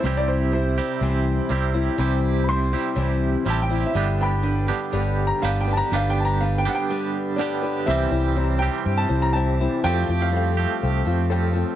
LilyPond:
<<
  \new Staff \with { instrumentName = "Grand piano" } { \time 4/4 \key g \mixolydian \tempo 4 = 122 c''16 d''16 c''8 <e' c''>2 r4 | r4 <b'' c'''>2 a''16 g''8 e''16~ | e''8 <g'' b''>4 r8 \tuplet 3/2 { r4 bes''8 f''8 g''8 <a'' bes''>8 } | \tuplet 3/2 { f''8 g''8 <a'' bes''>8 f''8 g''8 <fis'' g''>8~ } <fis'' g''>16 r8. d''4 |
\key c \major e''4. g''8. a''8 bes''16 a''4 | g''8. f''16 f''2~ f''8 r8 | }
  \new Staff \with { instrumentName = "Reed electric piano" } { \time 4/4 \key g \mixolydian r1 | r1 | r1 | r1 |
\key c \major <g' c'' e'' g''>4 <g' c'' e'' bes''>4 <g' c'' e'' g''>4 <g' c'' e'' g''>4 | <a' c'' f'' g''>4 <a' c'' f'' g''>4 <a' c'' f'' g''>4 <a' c'' f'' g''>4 | }
  \new Staff \with { instrumentName = "Steel-string acoustic guitar" } { \time 4/4 \key g \mixolydian <c e g c' e' c''>4 <g c' e' c''>4 <c e g c' e' c''>4 <g c' e' c''>8 <g c' e' c''>8 | <c e g c' e' c''>4 <g c' e' c''>8 <g c' e' c''>8 <c e g c' e' c''>4 <g c' e' c''>8 <g c' e' c''>8 | <g d' g' b'>4 <g d' g' b'>8 <d' g' b'>8 <g d' g' b'>4 <g d' g' b'>8 <d' g' b'>8 | <g d' g' b'>4 <g d' g' b'>4 <g d' g' b'>4 <g d' g' b'>8 <d' g' b'>8 |
\key c \major <c e g c' e' c''>8 <g c' e' c''>8 <g c' e' c''>4. <g c' e' c''>8 <g c' e' c''>8 <g c' e' c''>8 | <f g c' f' a'>8 <c' f' a'>8 <g c' f' a'>4. <c' f' a'>8 <g c' f' a'>8 <c' f' a'>8 | }
  \new Staff \with { instrumentName = "Clean electric guitar" } { \time 4/4 \key g \mixolydian <c g c' e' g'>4. <c g c' e' g'>4. <c g c' e' g'>4 | <c g c' e' g'>4. <c g c' e' g'>4. <c g c' e' g'>4 | <g, d g b d' g'>4. <g, d g b d' g'>4. <g, d g b d' g'>4 | <g, d g b d' g'>4. <g, d g b d' g'>4. <g, d g b d' g'>4 |
\key c \major <c e g c' g'>4. <c e g c' g'>2~ <c e g c' g'>8 | <f a c' g'>4. <f a c' g'>2~ <f a c' g'>8 | }
  \new Staff \with { instrumentName = "Fingered electric bass" } { \clef bass \time 4/4 \key g \mixolydian c,2 c,4 c,4 | c,2 c,4 a,,4 | g,,2 g,,4 g,,4 | g,,2 r2 |
\key c \major c,8 c,4. g,8 c,4. | f,8 f,4. c,8 f,4. | }
>>